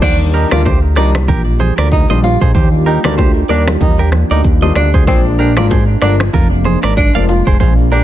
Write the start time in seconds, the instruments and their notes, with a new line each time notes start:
0.02 analog synth bass D#2, grand piano D#3 G3 A#3 D4, analog synth pad G3 A#3 D4 F4 G4, tenor saxophone D4, clean electric guitar G4 C5, kick, crash, low conga, shaker
0.34 tenor saxophone D#4, clean electric guitar G4 A#4, shaker
0.51 analog synth bass D2, grand piano D#3 G3 A#3 D4, tenor saxophone F4, clean electric guitar A#4 D5, finger snap, cross-stick, low bongo, shaker
0.65 clean electric guitar G4 C5, kick, high bongo, shaker
0.96 analog synth bass C2, grand piano D#3 G3 A#3 D4, tenor saxophone D#4, clean electric guitar A#4 D5, finger snap, cross-stick, shaker
1.15 finger snap, cross-stick, low bongo, shaker
1.28 analog synth bass A#1, clean electric guitar G4 A#4, kick, low conga, shaker
1.59 clean electric guitar G#4 C5, low bongo, low conga, shaker
1.78 analog synth bass D2, clean electric guitar A#4 D5, finger snap, cross-stick, shaker
1.91 tenor saxophone D#4, kick, high bongo, low bongo, shaker
2.10 analog synth bass A#1, grand piano D#3 G3 A#3 D4, clean electric guitar C5 D#5
2.23 tenor saxophone F4, high bongo, shaker
2.41 analog synth bass A#1, clean electric guitar G#4 C5, kick, shaker
2.55 analog synth bass D#2, clean electric guitar G4 C5, kick, low conga, shaker
2.86 tenor saxophone D#4, clean electric guitar G4 A#4, shaker
3.04 analog synth bass D2, grand piano D#3 G3 A#3 D4, clean electric guitar A#4 D5, finger snap, cross-stick, low bongo, shaker
3.18 clean electric guitar G4 C5, kick, high bongo, shaker
3.49 analog synth bass D#2, grand piano D#3 G3 A#3 D4, tenor saxophone D4, clean electric guitar A#4 D5, shaker
3.67 finger snap, cross-stick, low bongo, shaker
3.81 analog synth bass D#2, tenor saxophone D#4, kick, low conga, shaker
3.99 clean electric guitar G4 A#4
4.12 finger snap, cross-stick, low bongo, low conga, shaker
4.31 analog synth bass D2, tenor saxophone D#4, clean electric guitar A#4 D5, shaker
4.44 analog synth bass D#2, kick, high bongo, low bongo, shaker
4.62 grand piano D#3 G3 A#3 D4, clean electric guitar C5 D#5
4.76 analog synth bass D2, tenor saxophone D4, finger snap, cross-stick, high bongo, shaker
4.94 clean electric guitar G#4 C5, kick, shaker
5.07 analog synth bass A#1, grand piano F3 G#3 A#3 D4, analog synth pad G#3, tenor saxophone C4, clean electric guitar G#4 C5, kick, low conga, shaker
5.39 tenor saxophone D4, clean electric guitar G4 A#4, shaker
5.57 analog synth bass G#1, grand piano F3 G#3 A#3 D4, tenor saxophone F4, clean electric guitar A#4 D5, finger snap, cross-stick, low bongo, shaker
5.70 clean electric guitar G#4 C5, kick, high bongo, shaker
6.02 analog synth bass G1, grand piano F3 G#3 A#3 D4, tenor saxophone D4, clean electric guitar A#4 D5, finger snap, cross-stick, shaker
6.20 finger snap, cross-stick, low bongo, shaker
6.33 analog synth bass F1, clean electric guitar F4 A#4, kick, low conga, shaker
6.64 clean electric guitar G#4 C5, low bongo, low conga, shaker
6.83 analog synth bass G#1, clean electric guitar A#4 D5, finger snap, cross-stick, shaker
6.97 tenor saxophone D4, kick, high bongo, low bongo, shaker
7.15 analog synth bass F1, grand piano F3 G#3 A#3 D4, clean electric guitar D5 F5
7.29 tenor saxophone F4, high bongo, shaker
7.47 analog synth bass F1, clean electric guitar G#4 C5, kick, shaker
7.60 analog synth bass A#1, clean electric guitar G#4 C5, kick, low conga, shaker
7.92 tenor saxophone D4, clean electric guitar G4 A#4, shaker